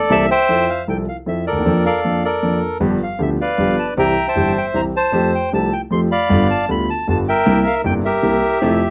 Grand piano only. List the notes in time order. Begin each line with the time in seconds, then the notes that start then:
0.09 C2 C3 E3 A#3 C4 G4
0.49 F2 F3 C4 E4 A4
0.88 C2 C3 F3 C4 E4 A4
1.26 F2 F3 C4 E4 A4
1.51 D2
1.56 D#2
1.60 E2
1.66 F2 F3 A#3 D4 A4
2.04 F2 F3 A#3 D4 A4
2.43 F2 F3 A#3 D4 A4
2.80 G1 G2 F3 B3 D4 G4
3.19 D2 D3 F3 B3 D4 G4
3.58 G1 G2 F3 B3 D4 G4
3.97 C2 C3 E3 G3 C4 G4
4.35 G1 G2 E3 G3 C4 G4
4.74 C2 C3 E3 G3 C4 G4
5.12 F2 F3 A3 C4 G4
5.52 C2 C3 F3 A3 C4 G4
5.91 F2 F3 A3 C4 G4
6.29 G1 G2 D3 G3 B3 F4
6.69 D2 D3 G3 B3 F4
7.08 G1 G2 D3 G3 B3 F4
7.46 C2 C3 G3 A#3 E4
7.84 G1 G2 C3 G3 A#3 E4
8.22 C2 C3 G3 A#3 E4
8.61 F2 C3 F3 A3 E4